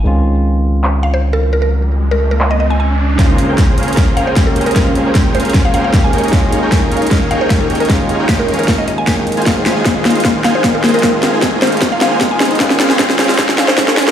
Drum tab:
HH |--------------------------------|--------------------------------|x---x---x---xxxxx---x---x---xxxx|x---x---x---xxxxx---x---x---xxxx|
CP |----------------x---------------|----------------x---------------|--------------------------------|--------------------------------|
SD |--------------------------------|--------------------------------|o-------o-------o-------o-------|o-------o-------o-------o-------|
BD |--------------------------------|--------------------------------|o-------o-------o-------o-------|o-------o-------o-------o-------|

HH |x---x---x---xxxxx---x---x---xxxx|x---x---x---xxxxx---x---x---xxxx|x---x---x---xxxxx---x---x---oxxx|x---x---x---xxxxx---x---x---oxxx|
CP |--------------------------------|--------------------------------|--------------------------------|--------------------------------|
SD |o-------o-------o-------o-------|o-------o-------o-------o-------|o---o---o---o---o---o---o---o---|o---o---o---o---o---o---o---o---|
BD |o-------o-------o-------o-------|o-------o-------o-------o-------|o-------o-------o-------o-------|o-------o-------o-------o-------|

HH |x---x---x---xxxxx---x---x---oxx-|
CP |--------------------------------|
SD |o-o-o-o-o-o-o-o-o-o-o-o-o-o-o-o-|
BD |o-------o-------o-------o-------|